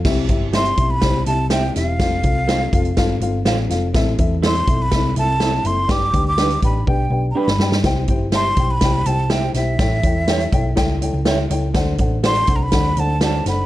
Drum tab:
CC |x---------------|----------------|----------------|----------------|
HH |--x-xxx-x-x-x-x-|x-x-x-xxx-x-x-x-|x-x-xxx-x-x-x-x-|x-x-xxx---------|
SD |o---o---o---o-o-|o---o---o---o-o-|o---o---o---o---|o---o--------ooo|
BD |o-o---o-o-------|o-o---o-o-------|o-o---o-o-------|o-o---o-o-------|

CC |----------------|----------------|----------------|
HH |x-x-x-x-x-x-x-x-|x-x-xxx-x-x-x-x-|x-x-xxx-x-x-x-x-|
SD |o---o---o---o-o-|o---o---o---o---|o---o---o---o-o-|
BD |o-o---o-o-------|o-o---o-o-------|o-o---o-o-------|